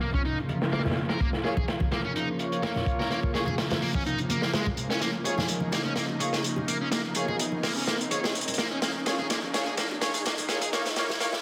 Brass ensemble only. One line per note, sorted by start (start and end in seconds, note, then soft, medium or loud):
1.44 1.56 A#3 medium
1.44 1.56 F4 medium
1.44 1.56 C#5 loud
2.39 3.32 A#3 loud
2.39 3.32 F4 medium
2.39 3.32 C#5 loud
3.35 3.46 A#3 medium
3.35 3.46 F4 medium
3.35 3.46 C#5 medium
5.25 5.37 A#3 medium
5.25 5.37 F4 medium
5.25 5.37 C#5 medium
6.21 6.32 A#3 medium
6.21 6.32 F4 medium
6.21 6.32 C#5 loud
7.16 7.27 A#3 medium
7.16 7.27 F4 medium
7.16 7.27 C#5 loud
8.11 8.23 A#3 medium
8.11 8.23 F4 medium
8.11 8.23 C#5 loud
9.06 9.18 A#3 medium
9.06 9.18 F4 medium
9.06 9.18 C#5 loud
9.54 9.65 A#3 medium
9.54 9.65 F4 medium
9.54 9.65 C#5 loud
10.02 10.13 A#3 medium
10.02 10.13 F4 medium
10.02 10.13 C#5 loud
10.49 10.61 A#3 medium
10.49 10.61 F4 medium
10.49 10.61 C#5 loud
10.73 10.85 A#3 medium
10.73 10.85 F4 medium
10.73 10.85 C#5 loud
10.97 11.08 A#3 loud
10.97 11.08 F4 medium
10.97 11.08 C#5 loud
11.21 11.32 A#3 loud
11.21 11.32 F4 medium
11.21 11.32 C#5 loud